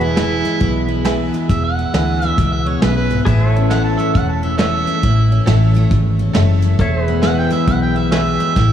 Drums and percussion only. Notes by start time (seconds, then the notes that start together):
0.17 snare, closed hi-hat
0.45 closed hi-hat
0.61 kick, closed hi-hat
1.05 snare, closed hi-hat
1.33 closed hi-hat
1.49 kick, closed hi-hat
1.94 snare, closed hi-hat
2.21 closed hi-hat
2.38 kick, closed hi-hat
2.82 snare, closed hi-hat
3.10 closed hi-hat
3.26 kick, closed hi-hat
3.71 snare, closed hi-hat
3.98 closed hi-hat
4.15 kick, closed hi-hat
4.59 snare, closed hi-hat
4.87 closed hi-hat
5.03 kick, closed hi-hat
5.47 snare, closed hi-hat
5.74 closed hi-hat
5.91 kick, closed hi-hat
6.35 snare, closed hi-hat
6.62 closed hi-hat
6.79 kick, closed hi-hat
7.23 snare, closed hi-hat
7.51 closed hi-hat
7.68 kick, closed hi-hat
8.12 snare, closed hi-hat
8.40 closed hi-hat
8.56 kick, snare